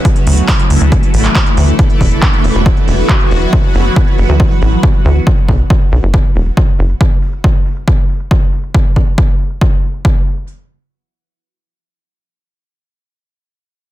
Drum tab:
HH |xxoxxxoxxxoxxxox|xxoxxxoxxxoo-xox|xxoxxxoxxxox-xox|-xox-xox-xoo-xox|
CP |----x------xx---|----x-------x---|----------------|----------------|
BD |o---o---o---o---|o-o-o---o---o---|o---o---o---o---|o-o-o---o---o---|

HH |-xox-xox-xox-xox|-x-x--ox--oo-xox|----------------|----------------|
CP |----------------|----------------|----------------|----------------|
BD |o---o---o---o---|o-o-o---o---o---|----------------|----------------|